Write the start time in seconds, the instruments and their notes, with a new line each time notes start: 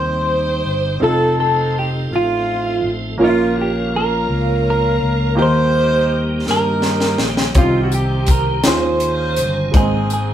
Already playing: fingered electric bass D#2, upright piano C3 G3 C4 D#4 G4, tonewheel organ G3 C4 D#4 C5, saxophone section D#4 G4 C5, clean electric guitar C5
0.65 fingered electric bass G1
1.00 fingered electric bass F1, tonewheel organ F3 C4 D#4 A4, upright piano C4 D#4 F4 A4, saxophone section C4 D#4 A4
1.04 clean electric guitar A4
1.39 saxophone section A4, clean electric guitar A4
1.76 saxophone section G4, clean electric guitar G4
2.11 fingered electric bass A1, saxophone section A3 C4 F4
2.16 clean electric guitar F4
2.84 fingered electric bass A1
3.18 fingered electric bass A#1, upright piano A#2 A#3 C#4 F4 A#4, tonewheel organ F3 A#3 C#4 A#4, saxophone section A#3 C#4
3.22 saxophone section F4, clean electric guitar F4
3.55 saxophone section G4
3.61 clean electric guitar G4
3.92 saxophone section C#4 F4 A#4, clean electric guitar A#4
4.29 fingered electric bass C#2
4.70 clean electric guitar A#4
5.02 fingered electric bass C#2
5.35 fingered electric bass D#2, upright piano D#3 A#3 D#4 G4 A#4, tonewheel organ D#3 G3 A#3 G4, saxophone section D#4 G4 C5
5.42 clean electric guitar C5
6.47 fingered electric bass G2, saxophone section D#4 G4 A#4, clean electric guitar A#4, snare
6.82 snare
7.00 snare
7.18 fingered electric bass A#1, snare
7.37 snare
7.55 fingered electric bass C2, upright piano C3 C4 C#4 G4 C5, tonewheel organ D#3 G3 C4 G4, saxophone section C4 F4, clean electric guitar F4, kick, closed hi-hat
7.62 upright piano D#4
7.83 clean electric guitar F#4
7.92 saxophone section G4, clean electric guitar G4, closed hi-hat, tambourine
8.27 kick, closed hi-hat, tambourine
8.31 saxophone section A#4, clean electric guitar A#4
8.64 fingered electric bass D#2, tonewheel organ D#3 G#3 C#4 F4, upright piano D#3 C#4 D#4 F4 G#4, saxophone section F4, clean electric guitar C5, snare, closed hi-hat, tambourine
8.68 saxophone section G#4 C5
9.00 closed hi-hat
9.36 fingered electric bass G1, closed hi-hat, tambourine
9.72 fingered electric bass G#1, upright piano G#2 G#3 A#3 D#4 C5, tonewheel organ D#3 G#3, kick, closed hi-hat
9.76 tonewheel organ C4 C5, saxophone section C4 D#4 G#4, clean electric guitar G#4
9.80 upright piano C4
10.10 saxophone section G#4, clean electric guitar G#4, closed hi-hat, tambourine